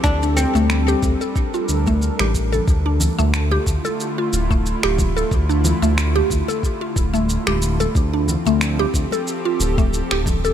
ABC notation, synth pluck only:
X:1
M:4/4
L:1/16
Q:"Swing 16ths" 1/4=91
K:Dm
V:1 name="Synth pluck"
z D z A, z G2 A z F z A, z G2 A | z D z A, z G2 A z F z A, z G2 A | z D z A, z G2 A z F z A, z G2 A | z D z A, z G2 A z F z A, z G2 A |]